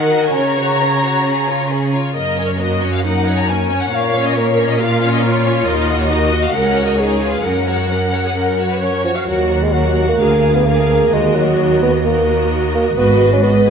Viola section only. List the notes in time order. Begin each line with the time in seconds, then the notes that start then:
Already playing: A#4
0.35 C#5
2.16 A#4
2.61 F#4
3.06 D#4
3.49 C#4
3.92 C#5
4.36 A#4
4.80 F4
6.10 F#4
6.54 A#4
6.98 G#4
7.44 A#4
7.90 A#4
8.24 G#4
8.36 A#4
8.70 B4
8.80 C#5
9.15 F5
9.27 F#4
9.74 F#4
10.20 G#4
10.67 G#4
11.13 F#4
12.05 F#4
12.97 F#4
13.43 F#4
13.66 G#4